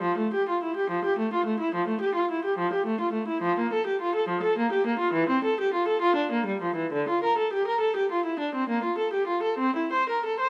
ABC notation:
X:1
M:12/8
L:1/16
Q:3/8=69
K:F
V:1 name="Viola"
F, A, G F E G F, G A, F A, E F, A, G F E G F, G A, F A, E | F, B, A G F A F, A B, G B, F E, C A G F A F D B, G, F, E, | D, F B A G B A G F E D C B, F A G F A C E c B A c |]